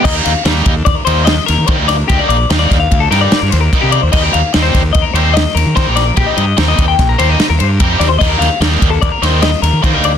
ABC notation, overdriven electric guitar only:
X:1
M:5/4
L:1/8
Q:1/4=147
K:Eb
V:1 name="Overdriven electric guitar"
[E,G,B,E] z [E,G,B,E] z2 [E,G,B,E] z2 [E,G,B,E] z | [E,G,B,E] z [E,G,B,E] z2 [E,G,B,E] z2 [E,G,B,E] z | [G,CEG] z [G,CEG] z2 [G,CEG] z2 [G,CEG] z | [G,CEG] z [G,CEG] z2 [G,CEG] z2 [G,CEG] z |
[E,G,B,E] z [E,G,B,E] z2 [E,G,B,E] z2 [E,G,B,E] z |]